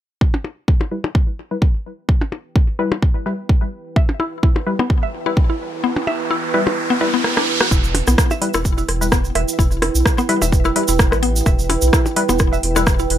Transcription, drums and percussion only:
0.21 kick
0.34 percussion blips
0.45 percussion blips
0.68 kick
0.81 percussion blips
1.04 percussion blips
1.15 kick
1.62 kick
2.09 kick
2.21 percussion blips
2.32 percussion blips
2.56 kick
2.92 percussion blips
3.02 kick
3.49 kick
3.96 kick
4.09 percussion blips
4.20 percussion blips
4.43 kick
4.56 percussion blips
4.79 percussion blips
4.90 kick
5.37 kick
5.96 percussion blips
6.07 percussion blips
6.67 percussion blips
7.24 cross-stick
7.37 cross-stick
7.61 cross-stick
7.71 kick, cabasa
7.84 cabasa
7.95 open hi-hat, percussion blips
8.07 cross-stick, cabasa
8.18 kick, cross-stick, cabasa
8.31 percussion blips, cabasa
8.42 open hi-hat
8.54 cross-stick, percussion blips, cabasa
8.65 kick, cabasa
8.78 cabasa
8.89 cross-stick, open hi-hat
9.02 cabasa
9.12 kick, cross-stick, cabasa
9.25 cabasa
9.35 cross-stick, open hi-hat
9.48 cabasa
9.59 kick, cabasa
9.71 cabasa
9.82 cross-stick, open hi-hat, percussion blips
9.95 cabasa
10.06 kick, cross-stick, cabasa
10.18 cross-stick, cabasa
10.29 open hi-hat
10.42 percussion blips, cabasa
10.52 kick, cabasa
10.65 cross-stick, cabasa
10.76 open hi-hat
10.88 cabasa
10.99 kick, cross-stick, cabasa
11.12 cross-stick, cabasa
11.23 open hi-hat
11.36 cabasa
11.46 kick, cross-stick, cabasa
11.59 cabasa
11.70 open hi-hat, percussion blips
11.82 cabasa
11.93 kick, cross-stick, cabasa
12.06 percussion blips, cabasa
12.16 open hi-hat
12.29 percussion blips, cabasa
12.39 kick, cross-stick, cabasa
12.53 cabasa
12.63 open hi-hat
12.76 cross-stick, cabasa
12.87 kick, cross-stick, cabasa
12.99 cabasa
13.10 open hi-hat

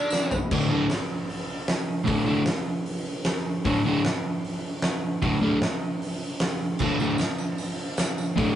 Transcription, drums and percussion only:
0.10 snare, tambourine
0.31 floor tom, tambourine
0.51 kick, crash
0.90 snare, open hi-hat
1.29 open hi-hat
1.68 snare, open hi-hat
2.07 kick, open hi-hat
2.46 snare, open hi-hat
2.86 open hi-hat
3.25 snare, open hi-hat
3.36 snare
3.65 kick, open hi-hat
4.05 snare, open hi-hat
4.45 open hi-hat
4.82 snare, open hi-hat
5.22 kick, open hi-hat
5.62 snare, open hi-hat
6.02 open hi-hat
6.40 snare, open hi-hat
6.79 kick, crash, tambourine
7.00 tambourine
7.10 tambourine
7.18 snare, open hi-hat, tambourine
7.38 tambourine
7.58 open hi-hat, tambourine
7.97 snare, open hi-hat, tambourine
8.08 tambourine
8.18 tambourine
8.38 kick, open hi-hat, tambourine

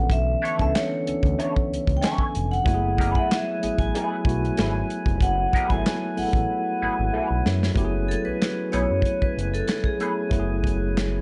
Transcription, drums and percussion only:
0.10 kick, closed hi-hat
0.45 closed hi-hat
0.59 kick, closed hi-hat
0.75 snare, clap, closed hi-hat
1.07 closed hi-hat
1.23 kick, closed hi-hat
1.40 closed hi-hat
1.56 kick
1.74 closed hi-hat
1.87 kick, closed hi-hat
2.02 snare, clap, closed hi-hat
2.18 kick
2.35 closed hi-hat
2.53 closed hi-hat
2.66 kick, closed hi-hat
2.98 kick, closed hi-hat
3.15 kick
3.31 snare, clap, closed hi-hat
3.63 closed hi-hat
3.78 kick, closed hi-hat
3.95 closed hi-hat
4.25 kick
4.29 closed hi-hat
4.45 closed hi-hat
4.57 snare, clap, closed hi-hat
4.90 closed hi-hat
5.06 kick, closed hi-hat
5.21 kick, closed hi-hat
5.53 kick, closed hi-hat
5.70 kick, closed hi-hat
5.86 snare, clap, closed hi-hat
6.17 open hi-hat
6.33 kick, closed hi-hat
7.46 snare
7.63 snare
7.76 kick, closed hi-hat
8.11 closed hi-hat
8.42 snare, clap, closed hi-hat
8.73 closed hi-hat
9.02 kick, closed hi-hat
9.22 kick
9.39 closed hi-hat
9.54 closed hi-hat
9.68 snare, clap, closed hi-hat
9.84 kick
10.00 closed hi-hat
10.31 kick, closed hi-hat
10.64 kick, closed hi-hat
10.97 snare, clap, closed hi-hat

